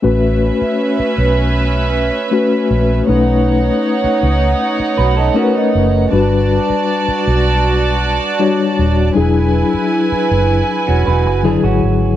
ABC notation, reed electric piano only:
X:1
M:4/4
L:1/8
Q:1/4=79
K:A
V:1 name="Reed electric piano"
[A,CFB]3 z3 [A,CFB]2 | [A,C^DB]3 z3 [A,CD_B=B]2 | [=G,DFB]3 z3 [G,DFc]2 | [F,DEG]3 z3 [D,F,EG]2 |]